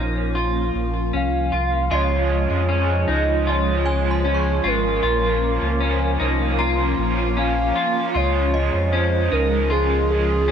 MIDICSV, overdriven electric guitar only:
0, 0, Header, 1, 2, 480
1, 0, Start_track
1, 0, Tempo, 779221
1, 1180, Time_signature, 4, 2, 24, 8
1, 6477, End_track
2, 0, Start_track
2, 0, Title_t, "Overdriven electric guitar"
2, 0, Program_c, 0, 29
2, 1172, Note_on_c, 0, 49, 80
2, 1180, Note_on_c, 0, 53, 79
2, 1186, Note_on_c, 0, 56, 80
2, 1192, Note_on_c, 0, 61, 82
2, 1406, Note_off_c, 0, 61, 0
2, 1413, Note_on_c, 0, 61, 55
2, 1416, Note_off_c, 0, 49, 0
2, 1420, Note_off_c, 0, 53, 0
2, 1421, Note_off_c, 0, 56, 0
2, 1428, Note_on_c, 0, 56, 47
2, 1440, Note_on_c, 0, 53, 42
2, 1654, Note_on_c, 0, 49, 72
2, 1655, Note_off_c, 0, 53, 0
2, 1656, Note_off_c, 0, 61, 0
2, 1661, Note_off_c, 0, 56, 0
2, 1663, Note_on_c, 0, 53, 76
2, 1669, Note_on_c, 0, 56, 83
2, 1675, Note_on_c, 0, 61, 83
2, 1883, Note_off_c, 0, 61, 0
2, 1890, Note_on_c, 0, 61, 57
2, 1897, Note_off_c, 0, 49, 0
2, 1897, Note_off_c, 0, 56, 0
2, 1901, Note_off_c, 0, 53, 0
2, 1905, Note_on_c, 0, 56, 48
2, 1919, Note_on_c, 0, 53, 41
2, 2134, Note_on_c, 0, 49, 60
2, 2135, Note_off_c, 0, 61, 0
2, 2136, Note_off_c, 0, 53, 0
2, 2142, Note_off_c, 0, 56, 0
2, 2143, Note_on_c, 0, 53, 63
2, 2153, Note_on_c, 0, 56, 62
2, 2161, Note_on_c, 0, 61, 72
2, 2364, Note_off_c, 0, 61, 0
2, 2371, Note_on_c, 0, 61, 50
2, 2377, Note_off_c, 0, 49, 0
2, 2380, Note_off_c, 0, 56, 0
2, 2381, Note_off_c, 0, 53, 0
2, 2388, Note_on_c, 0, 56, 47
2, 2402, Note_on_c, 0, 53, 44
2, 2615, Note_off_c, 0, 61, 0
2, 2616, Note_off_c, 0, 53, 0
2, 2616, Note_on_c, 0, 49, 73
2, 2623, Note_on_c, 0, 53, 81
2, 2624, Note_off_c, 0, 56, 0
2, 2630, Note_on_c, 0, 56, 74
2, 2636, Note_on_c, 0, 61, 91
2, 2846, Note_off_c, 0, 61, 0
2, 2853, Note_on_c, 0, 61, 52
2, 2858, Note_off_c, 0, 49, 0
2, 2861, Note_off_c, 0, 53, 0
2, 2861, Note_off_c, 0, 56, 0
2, 2869, Note_on_c, 0, 56, 50
2, 2880, Note_on_c, 0, 53, 46
2, 3095, Note_off_c, 0, 53, 0
2, 3095, Note_on_c, 0, 46, 83
2, 3096, Note_off_c, 0, 61, 0
2, 3103, Note_on_c, 0, 53, 84
2, 3104, Note_off_c, 0, 56, 0
2, 3110, Note_on_c, 0, 58, 81
2, 3116, Note_on_c, 0, 61, 87
2, 3324, Note_off_c, 0, 61, 0
2, 3332, Note_on_c, 0, 61, 52
2, 3337, Note_off_c, 0, 46, 0
2, 3340, Note_off_c, 0, 58, 0
2, 3341, Note_off_c, 0, 53, 0
2, 3347, Note_on_c, 0, 58, 49
2, 3361, Note_on_c, 0, 53, 42
2, 3574, Note_off_c, 0, 53, 0
2, 3574, Note_on_c, 0, 46, 91
2, 3576, Note_off_c, 0, 61, 0
2, 3581, Note_off_c, 0, 58, 0
2, 3582, Note_on_c, 0, 53, 91
2, 3588, Note_on_c, 0, 58, 89
2, 3594, Note_on_c, 0, 61, 97
2, 3806, Note_off_c, 0, 61, 0
2, 3814, Note_on_c, 0, 61, 62
2, 3817, Note_off_c, 0, 46, 0
2, 3821, Note_off_c, 0, 53, 0
2, 3821, Note_off_c, 0, 58, 0
2, 3829, Note_on_c, 0, 58, 58
2, 3842, Note_on_c, 0, 53, 51
2, 4054, Note_on_c, 0, 46, 71
2, 4057, Note_off_c, 0, 61, 0
2, 4059, Note_off_c, 0, 53, 0
2, 4064, Note_off_c, 0, 58, 0
2, 4066, Note_on_c, 0, 53, 64
2, 4074, Note_on_c, 0, 58, 72
2, 4083, Note_on_c, 0, 61, 70
2, 4288, Note_off_c, 0, 61, 0
2, 4295, Note_on_c, 0, 61, 61
2, 4297, Note_off_c, 0, 46, 0
2, 4303, Note_off_c, 0, 53, 0
2, 4305, Note_off_c, 0, 58, 0
2, 4312, Note_on_c, 0, 58, 58
2, 4325, Note_on_c, 0, 53, 50
2, 4535, Note_on_c, 0, 46, 73
2, 4537, Note_off_c, 0, 53, 0
2, 4537, Note_off_c, 0, 61, 0
2, 4542, Note_off_c, 0, 58, 0
2, 4544, Note_on_c, 0, 53, 76
2, 4550, Note_on_c, 0, 58, 84
2, 4557, Note_on_c, 0, 61, 82
2, 4767, Note_off_c, 0, 61, 0
2, 4775, Note_on_c, 0, 61, 56
2, 4777, Note_off_c, 0, 46, 0
2, 4782, Note_off_c, 0, 53, 0
2, 4785, Note_off_c, 0, 58, 0
2, 4792, Note_on_c, 0, 58, 53
2, 4803, Note_on_c, 0, 53, 46
2, 5016, Note_off_c, 0, 53, 0
2, 5016, Note_on_c, 0, 49, 78
2, 5017, Note_off_c, 0, 61, 0
2, 5023, Note_on_c, 0, 53, 82
2, 5026, Note_off_c, 0, 58, 0
2, 5032, Note_on_c, 0, 56, 87
2, 5037, Note_on_c, 0, 61, 91
2, 5249, Note_off_c, 0, 61, 0
2, 5256, Note_on_c, 0, 61, 56
2, 5258, Note_off_c, 0, 49, 0
2, 5262, Note_off_c, 0, 53, 0
2, 5264, Note_off_c, 0, 56, 0
2, 5271, Note_on_c, 0, 56, 50
2, 5284, Note_on_c, 0, 53, 45
2, 5498, Note_off_c, 0, 61, 0
2, 5499, Note_off_c, 0, 53, 0
2, 5499, Note_on_c, 0, 49, 78
2, 5505, Note_off_c, 0, 56, 0
2, 5507, Note_on_c, 0, 53, 84
2, 5513, Note_on_c, 0, 56, 84
2, 5518, Note_on_c, 0, 61, 86
2, 5726, Note_off_c, 0, 61, 0
2, 5734, Note_on_c, 0, 61, 54
2, 5739, Note_off_c, 0, 49, 0
2, 5742, Note_off_c, 0, 56, 0
2, 5743, Note_off_c, 0, 53, 0
2, 5750, Note_on_c, 0, 56, 52
2, 5760, Note_on_c, 0, 53, 49
2, 5976, Note_on_c, 0, 49, 56
2, 5977, Note_off_c, 0, 61, 0
2, 5979, Note_off_c, 0, 53, 0
2, 5985, Note_off_c, 0, 56, 0
2, 5987, Note_on_c, 0, 53, 64
2, 5995, Note_on_c, 0, 56, 63
2, 6005, Note_on_c, 0, 61, 65
2, 6204, Note_off_c, 0, 61, 0
2, 6211, Note_on_c, 0, 61, 53
2, 6218, Note_off_c, 0, 49, 0
2, 6220, Note_off_c, 0, 56, 0
2, 6223, Note_off_c, 0, 53, 0
2, 6227, Note_on_c, 0, 56, 54
2, 6242, Note_on_c, 0, 53, 43
2, 6454, Note_off_c, 0, 53, 0
2, 6454, Note_on_c, 0, 49, 74
2, 6455, Note_off_c, 0, 61, 0
2, 6461, Note_off_c, 0, 56, 0
2, 6477, Note_off_c, 0, 49, 0
2, 6477, End_track
0, 0, End_of_file